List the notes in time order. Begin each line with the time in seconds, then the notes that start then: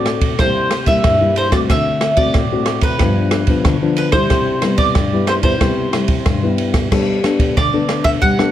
Already playing: A2 C4 F#4 A4 D5
0.06 cross-stick, ride
0.21 kick, ride
0.39 C3 G3 A#3 E4 C5, kick, cross-stick, ride
0.71 cross-stick, ride
0.86 G3 A#3 E4 E5, kick, ride
1.04 G2, kick, cross-stick, ride
1.21 G3 A#3 E4
1.36 C5, ride
1.52 A3 C4 F#4 D5, kick, cross-stick, ride
1.69 D3 E5, kick, cross-stick, ride
2.01 cross-stick, ride
2.17 A3 C4 F#4 D5, kick, ride
2.34 A2, kick, cross-stick, ride
2.52 A3 C4 F#4
2.66 cross-stick, ride
2.81 B4, kick, ride
2.99 G2 F3 B3 D4, kick, cross-stick, ride
3.31 cross-stick, ride
3.47 F3 B3 D4, kick, ride
3.65 D3, kick, cross-stick, ride
3.82 F3 B3 D4
3.97 B4, ride
4.12 G3 E4 C5, kick, cross-stick, ride
4.30 C3, kick, cross-stick, ride
4.62 G3 B3 E4, cross-stick, ride
4.78 D5, kick, ride
4.95 G2, kick, cross-stick, ride
5.13 G3 B3 E4
5.27 C5, cross-stick, ride
5.43 G3 B3 E4 C5, kick, ride
5.61 C3 G3 B3 E4, kick, cross-stick, ride
5.93 G3 E4, cross-stick, ride
6.08 kick, ride
6.26 G2, kick, cross-stick, ride
6.42 G3 B3 E4
6.58 ride
6.74 kick, cross-stick, ride
6.92 G3 B3 D4 A4, kick, cross-stick, crash
7.23 B3 D4 A4, cross-stick, ride
7.39 kick, ride
7.57 D3 D5, kick, cross-stick, ride
7.73 B3 D4 A4
7.89 cross-stick, ride
8.04 E5, kick, cross-stick, ride
8.22 G3 F#5, kick, ride
8.38 B3 D4 A4, cross-stick